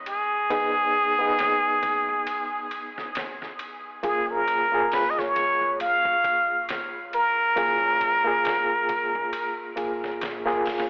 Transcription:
0.00 0.47 G#1 medium
0.00 0.46 B3 medium
0.00 0.46 D#4 medium
0.00 0.47 G#4 medium
0.06 2.68 G#4 loud
0.06 ride medium
0.50 1.79 G#1 loud
0.50 1.14 B3 medium
0.50 1.14 D#4 medium
0.50 1.14 G#4 medium
0.50 kick loud
0.50 ride medium
1.19 3.98 B3 medium
1.19 3.99 D#4 medium
1.19 4.00 G#4 medium
1.39 snare loud
1.39 ride medium
1.83 2.05 F#1 loud
1.83 kick medium
1.83 ride medium
2.08 2.25 D#2 medium
2.27 ride medium
2.71 ride medium
2.98 snare soft
3.15 snare loud
3.15 ride medium
3.42 snare soft
3.59 ride medium
4.03 5.32 F#1 loud
4.03 4.66 A#3 medium
4.03 4.67 F4 medium
4.03 4.67 G#4 loud
4.03 4.32 G#4 medium
4.03 kick loud
4.03 ride medium
4.31 4.95 A#4 medium
4.48 ride medium
4.72 7.51 A#3 medium
4.72 7.52 F4 medium
4.72 7.53 G#4 medium
4.92 5.12 B4 loud
4.92 snare loud
4.92 open hi-hat medium
5.10 5.20 D#5 medium
5.19 5.81 C#5 loud
5.19 snare medium
5.36 5.58 C#2 loud
5.36 ride medium
5.62 5.78 C#2 medium
5.80 7.53 F#1 loud
5.80 6.65 F5 loud
5.80 ride medium
6.05 kick loud
6.24 kick medium
6.24 ride medium
6.69 snare loud
6.69 ride medium
7.13 9.74 A#4 loud
7.13 ride medium
7.56 8.85 F#1 loud
7.56 8.20 A#3 medium
7.56 8.20 F4 medium
7.56 8.20 G#4 loud
7.56 kick loud
7.56 ride medium
8.01 kick loud
8.01 ride medium
8.24 9.73 A#3 medium
8.24 9.73 F4 medium
8.24 9.74 G#4 loud
8.45 snare loud
8.45 ride medium
8.89 9.11 C#2 medium
8.89 kick loud
8.89 ride medium
9.15 9.31 C#2 medium
9.33 ride medium
9.76 10.17 A#1 medium
9.76 10.40 A#3 medium
9.76 10.40 F4 medium
9.76 10.41 G#4 medium
9.76 ride medium
10.04 snare soft
10.21 10.66 A#1 loud
10.21 snare loud
10.21 ride medium
10.45 10.90 A#3 loud
10.45 10.90 F4 medium
10.45 10.90 G#4 loud
10.45 snare soft
10.65 10.88 F#1 medium
10.65 snare medium
10.65 open hi-hat medium
10.78 snare medium
10.78 open hi-hat medium

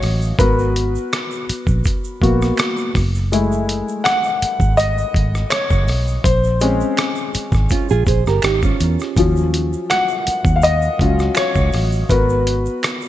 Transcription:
0.00 0.31 A1 medium
0.00 0.40 F#3 soft
0.00 0.40 C#4 soft
0.00 0.40 F4 soft
0.00 0.41 C#5 medium
0.00 0.40 D#5 medium
0.00 0.41 F#5 medium
0.00 cross-stick soft
0.00 open hi-hat soft
0.00 shaker soft
0.22 shaker medium
0.39 0.96 G#1 medium
0.39 2.21 B3 soft
0.39 2.21 F#4 medium
0.39 2.91 A#4 medium
0.39 1.81 B4 medium
0.39 kick loud
0.39 closed hi-hat medium
0.39 shaker medium
0.59 shaker soft
0.76 closed hi-hat medium
0.95 shaker soft
1.13 finger snap medium
1.13 cross-stick loud
1.13 closed hi-hat medium
1.13 shaker medium
1.31 shaker soft
1.49 muted fingered electric bass stroke soft
1.49 closed hi-hat medium
1.49 shaker soft
1.67 1.81 A#1 medium
1.67 kick medium
1.67 shaker soft
1.84 kick medium
1.84 closed hi-hat medium
1.84 shaker medium
2.04 shaker soft
2.22 2.51 A#1 medium
2.22 2.55 A#3 medium
2.22 2.55 B3 soft
2.22 2.55 F#4 medium
2.22 kick medium
2.22 closed hi-hat soft
2.42 cross-stick soft
2.42 shaker soft
2.57 finger snap medium
2.57 cross-stick loud
2.57 closed hi-hat medium
2.57 shaker medium
2.77 shaker soft
2.95 3.81 F#1 medium
2.95 kick loud
2.95 cross-stick soft
2.95 open hi-hat soft
2.95 shaker soft
3.15 shaker soft
3.32 4.38 G#3 soft
3.32 4.38 A3 soft
3.32 4.38 E4 medium
3.32 closed hi-hat medium
3.32 shaker medium
3.52 shaker soft
3.69 closed hi-hat medium
3.88 shaker soft
4.04 4.80 F#5 loud
4.04 finger snap medium
4.04 cross-stick medium
4.04 closed hi-hat medium
4.04 shaker soft
4.23 shaker soft
4.42 muted fingered electric bass stroke soft
4.42 closed hi-hat medium
4.42 shaker soft
4.60 5.02 G#1 medium
4.60 kick medium
4.60 shaker soft
4.77 5.47 D#5 medium
4.77 closed hi-hat medium
4.77 shaker medium
4.98 shaker soft
5.14 5.43 G#1 medium
5.14 kick medium
5.14 closed hi-hat soft
5.35 cross-stick soft
5.35 shaker soft
5.50 6.20 C#5 medium
5.50 finger snap medium
5.50 cross-stick loud
5.50 closed hi-hat medium
5.50 shaker medium
5.70 5.89 F#1 medium
5.70 kick medium
5.70 shaker soft
5.88 6.17 B1 medium
5.88 cross-stick soft
5.88 open hi-hat soft
5.88 shaker soft
6.08 shaker soft
6.24 6.82 A#1 loud
6.24 7.67 C5 medium
6.24 kick loud
6.24 closed hi-hat medium
6.24 shaker medium
6.44 shaker soft
6.60 7.67 G#3 medium
6.60 7.67 C4 medium
6.60 7.67 C#4 medium
6.60 closed hi-hat medium
6.60 shaker soft
6.80 shaker soft
6.97 finger snap medium
6.97 cross-stick medium
6.97 closed hi-hat medium
6.97 shaker medium
7.16 shaker soft
7.34 muted fingered electric bass stroke soft
7.34 closed hi-hat medium
7.34 shaker soft
7.52 7.66 G#1 medium
7.52 kick medium
7.52 cross-stick soft
7.52 shaker soft
7.69 7.90 C#4 soft
7.69 7.90 F4 medium
7.69 kick medium
7.69 closed hi-hat medium
7.69 shaker medium
7.89 8.04 A#1 medium
7.89 8.07 F4 medium
7.89 8.07 G#4 medium
7.89 shaker soft
8.06 8.22 A#1 medium
8.06 8.26 G#4 medium
8.06 8.26 C5 medium
8.06 kick medium
8.06 closed hi-hat medium
8.06 shaker soft
8.27 8.40 G1 medium
8.27 8.43 G4 medium
8.27 8.43 A#4 medium
8.27 cross-stick soft
8.27 shaker soft
8.42 8.72 G#1 medium
8.42 8.63 D#4 medium
8.42 8.62 G4 medium
8.42 finger snap medium
8.42 cross-stick loud
8.42 closed hi-hat medium
8.42 shaker medium
8.62 9.15 C#4 medium
8.62 9.14 F4 medium
8.62 kick medium
8.62 shaker soft
8.80 8.96 E2 medium
8.80 closed hi-hat medium
8.80 shaker soft
8.99 cross-stick soft
8.99 shaker soft
9.17 9.74 D#2 medium
9.17 12.06 F3 medium
9.17 10.99 F#3 soft
9.17 10.99 C#4 soft
9.17 kick loud
9.17 closed hi-hat medium
9.17 shaker medium
9.36 shaker soft
9.54 closed hi-hat medium
9.73 shaker soft
9.90 10.59 F#5 loud
9.90 finger snap soft
9.90 cross-stick medium
9.90 closed hi-hat medium
9.90 shaker medium
10.08 shaker soft
10.27 muted fingered electric bass stroke soft
10.27 closed hi-hat medium
10.27 shaker soft
10.45 10.88 D#2 medium
10.45 kick medium
10.45 shaker soft
10.56 10.63 F5 medium
10.62 11.32 D#5 medium
10.62 closed hi-hat medium
10.62 shaker medium
10.82 shaker soft
10.99 11.28 C#2 medium
10.99 11.33 F#3 soft
10.99 11.33 C#4 soft
10.99 11.34 F4 soft
10.99 kick medium
10.99 closed hi-hat soft
11.19 cross-stick soft
11.19 shaker soft
11.35 12.12 C#5 medium
11.35 finger snap medium
11.35 cross-stick loud
11.35 closed hi-hat medium
11.35 shaker medium
11.55 11.69 C#2 medium
11.55 kick medium
11.55 shaker soft
11.73 12.02 A1 medium
11.73 cross-stick soft
11.73 open hi-hat soft
11.73 shaker soft
11.92 shaker soft
12.10 12.67 G#1 medium
12.10 13.08 B3 soft
12.10 13.08 F#4 medium
12.10 13.08 A#4 soft
12.10 13.08 B4 medium
12.10 kick loud
12.10 closed hi-hat medium
12.10 shaker medium
12.29 shaker soft
12.47 closed hi-hat medium
12.66 shaker soft
12.83 finger snap medium
12.83 cross-stick medium
12.83 closed hi-hat medium
12.83 shaker medium
13.01 shaker soft

